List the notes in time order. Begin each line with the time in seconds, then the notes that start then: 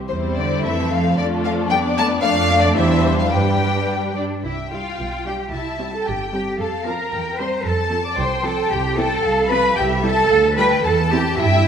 0.09 E2 C3 G3 C4 E4 C5
0.37 D3 D5
0.63 F2 E3 A3 C4 A4 E5
0.91 F3 F5
1.17 F2 D3 A3 D4 F4 A4 D5
1.44 F3 F5
1.70 G3 B3 D4 D5 G5
1.97 A3 A5
2.22 F2 F3 A3 D4 D5 F5
2.63 D3 D5
2.76 E2 E3 G3 E4 C5 E5
3.17 F3 F5
3.31 G2 G3 D4 G4 B4 G5
4.16 D4 D5
4.44 C2 E4 E5 G5
4.72 G3 E4 F4 F5
4.99 B1
5.26 G3 D4 G4 G5
5.52 C2 E4 E5 A5
5.79 G3 C4
5.94 A4 A5
6.06 G1 G4 G5
6.33 G3 C4 G4 G5
6.59 F2 A4 F5 A5
6.86 F3 C4 A#4 A#5
7.12 E2 G5
7.39 G3 C4 C5 A#5 C6
7.65 F2 A4 A5
7.91 F3 C4
8.06 D5 D6
8.18 C2 C5 G5 C6
8.44 F3 C4 A4 A5
8.71 C2 G4 G5
8.97 E3 C4 A4 A5
9.24 C2 F5
9.49 F3 C4 B4 B5
9.76 C2 G4 E5 G5
10.03 G3 E4 A4 A5
10.30 D2 F5
10.57 G3 F4 B4 G5 B5
10.84 E2 A4 A5
11.12 C4 E4 G4 G5
11.40 G2 E4 E5 G5